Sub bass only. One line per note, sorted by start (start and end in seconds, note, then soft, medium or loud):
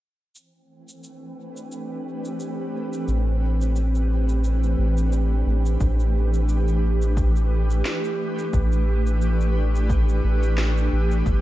3.08 4.75 A1 medium
4.78 5.44 A1 medium
5.46 5.77 A1 medium
5.81 7.82 A1 medium
8.54 10.21 A1 medium
10.24 10.89 A1 medium
10.92 11.23 A1 medium
11.26 11.41 G1 medium